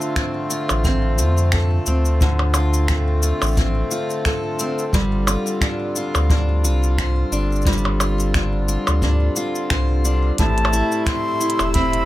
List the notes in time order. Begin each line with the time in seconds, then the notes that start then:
Already playing: D3 A3 C4 F4
0.01 shaker
0.16 C4, finger snap, kick, shaker
0.50 F4, shaker
0.69 A1, percussion blips, shaker
0.84 C4, kick, shaker
1.18 F2 F4, shaker
1.38 shaker
1.52 A4, finger snap, kick, shaker
1.86 D2 C4, shaker
2.05 shaker
2.21 D3, kick, shaker
2.39 percussion blips
2.54 F4, percussion blips, shaker
2.74 shaker
2.88 C4, finger snap, kick, shaker
3.23 F4, shaker
3.42 A1, percussion blips, shaker
3.44 shaker
3.51 shaker
3.53 shaker
3.55 C4, kick, shaker
3.57 shaker
3.91 F4, shaker
4.10 shaker
4.25 A4, finger snap, kick, shaker
4.59 C4, shaker
4.79 shaker
4.92 G1 G3, kick, shaker
5.27 F4, percussion blips, shaker
5.47 shaker
5.61 D4, finger snap, kick, shaker
5.96 F4, shaker
6.14 D2, percussion blips, shaker
6.30 D4, kick, shaker
6.63 C2 F4, shaker
6.83 shaker
6.98 C5, finger snap, kick, shaker
7.31 G1 D4, shaker
7.52 shaker
7.55 shaker
7.62 kick, shaker
7.66 G3, shaker
7.73 shaker
7.78 shaker
7.85 percussion blips
8.00 F4, percussion blips, shaker
8.20 shaker
8.34 D4, finger snap, kick, shaker
8.68 F4, shaker
8.87 D2, percussion blips, shaker
9.02 D4, kick, shaker
9.36 F4, shaker
9.55 shaker
9.70 C2 C5, finger snap, kick, shaker
10.05 D4, shaker
10.38 A1 A2 C3 G3 A3 E4 A5 E6, kick, closed hi-hat, shaker
10.58 closed hi-hat
10.65 percussion blips
10.73 E4, shaker
10.92 shaker
11.05 C4 C6, finger snap, kick, closed hi-hat, shaker
11.41 E4, shaker
11.50 closed hi-hat
11.59 E1, percussion blips, shaker
11.74 C4 B5, kick, closed hi-hat, shaker
11.93 closed hi-hat